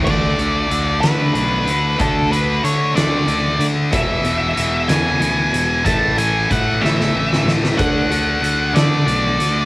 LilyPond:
<<
  \new Staff \with { instrumentName = "Lead electric guitar" } { \time 6/8 \key d \lydian \tempo 4. = 62 d''4. b'4. | a'8 b'8 cis''8 d''4 r8 | e''4. gis''4. | a''8 gis''8 fis''8 e''4 r8 |
fis''4. d''4. | }
  \new Staff \with { instrumentName = "Distorted electric guitar" } { \clef bass \time 6/8 \key d \lydian <d a d'>8 <d a d'>8 <d a d'>8 <d a d'>8 <d a d'>4 | <d a d'>8 <d a d'>8 <d a d'>8 <d a d'>8 <d a d'>4 | <e, b, e>8 <e, b, e>8 <e, b, e>8 <e, b, e>8 <e, b, e>4 | <a, e a>8 <a, e a>8 <a, e a>8 <a, e a>8 <a, e a>4 |
<d a d'>8 <d a d'>8 <d a d'>8 <d a d'>8 <d a d'>4 | }
  \new Staff \with { instrumentName = "Clean electric guitar" } { \clef bass \time 6/8 \key d \lydian <d a d'>8 <d a>8 r8 <d a d'>8 <d a>8 <d a>8 | <d a d'>8 <d a>8 r8 <d a d'>8 <d a>8 <d a>8 | <e, b, e>8 <e, b,>8 r8 <e, b, e>8 <e, b,>8 <e, b,>8 | <a, e a>8 <a, e>8 r8 <a, e a>8 <a, e>8 <a, e>8 |
<d a d'>8 <d a>8 r8 <d a d'>8 <d a>8 <d a>8 | }
  \new Staff \with { instrumentName = "Fingered electric bass" } { \clef bass \time 6/8 \key d \lydian d,8 d,8 d,8 d8 b,,8 d,8 | d,4 d8 d,8 d,8 d8 | e,,8 e,,8 e,,8 e,8 d,8 e,,8 | a,,4 a,8 a,,8 a,,8 a,8 |
d,8 d,8 d,8 d8 b,,8 d,8 | }
  \new DrumStaff \with { instrumentName = "Drums" } \drummode { \time 6/8 <cymc bd>8 hh8 hh8 <hh sn>8 hh8 hh8 | <hh bd>8 hh8 hh8 <hh sn>8 hh8 hh8 | <hh bd>8 hh8 hh8 <hh sn>8 hh8 hh8 | <hh bd>8 hh8 <hh bd>8 sn16 sn8 sn16 sn16 sn16 |
<hh bd>8 hh8 hh8 <hh sn>8 hh8 hh8 | }
>>